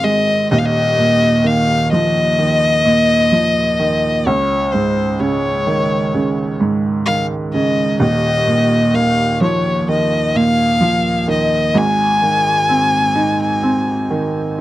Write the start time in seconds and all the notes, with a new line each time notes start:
Already playing: G#1 G#2 D#3 G#3 C4
0.04 G#3 D#5
0.51 D#1 D#2 D#5
0.58 F5
0.66 D#5
0.99 A#2
1.44 D#3 F5
1.92 F3 D#5
2.38 D#3
2.85 A#2
3.32 F3
3.80 D#3
4.26 C#2 C#5
4.72 G#2 C5
5.19 C#3 C#5
5.67 D#3
6.14 C#3
6.60 G#2
7.06 D#3 F5
7.53 C#3 D#5
8.00 D#1 D#2 D#5
8.47 A#2
8.94 D#3 F5
9.41 F3 C#5
9.89 D#3 D#5
10.35 A#2 F5
10.81 F3
11.28 D#3 D#5
11.75 G#1 G#2 G#5
12.22 D#3
12.69 C4
13.15 D#4
13.63 C4
14.10 D#3